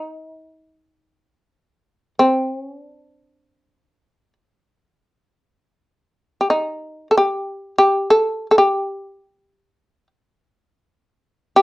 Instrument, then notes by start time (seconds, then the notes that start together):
shamisen
Already playing: D#4
2.19 C4
2.57 C#4
2.82 D4
6.41 G4
6.50 D#4
7.11 A4
7.17 G4
7.78 G4
8.10 A4
8.51 A4
8.58 G4
11.56 G4